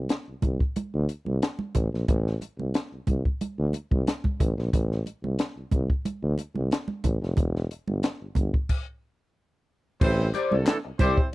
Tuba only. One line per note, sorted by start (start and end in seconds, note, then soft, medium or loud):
0.28 0.34 C2 soft
0.43 0.57 C2 medium
0.94 1.06 D2 loud
1.27 1.39 C2 medium
1.75 1.90 A1 medium
1.93 2.06 A#1 medium
2.09 2.36 A1 loud
2.59 2.72 C2 medium
2.92 2.98 C2 soft
3.08 3.22 C2 medium
3.59 3.71 D2 medium
3.92 4.04 C2 medium
4.40 4.55 A1 medium
4.58 4.70 A#1 medium
4.73 5.00 A1 loud
5.24 5.36 C2 medium
5.56 5.63 C2 soft
5.73 5.87 C2 medium
6.23 6.35 D2 medium
6.56 6.69 C2 medium
7.04 7.19 A1 medium
7.22 7.35 F1 medium
7.38 7.65 E1 medium
7.88 8.01 G1 medium
8.21 8.27 G1 soft
8.37 8.51 G1 medium
10.01 10.28 A1 loud
10.52 10.64 C2 medium
10.85 10.91 C2 soft
11.00 11.14 C2 medium